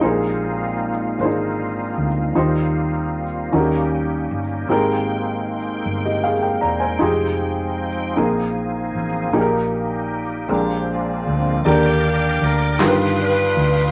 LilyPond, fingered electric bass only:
\new Staff \with { instrumentName = "Fingered electric bass" } { \clef bass \time 6/8 \key ees \major \tempo 4. = 52 bes,,4. aes,,4 d,8 | ees,4. ees,4 g,,8 | aes,,4. g,,4 fes,,8 | f,,4. bes,,4 a,,8 |
bes,,4. bes,,4 d,8 | ees,4 d,8 g,,4 d,8 | }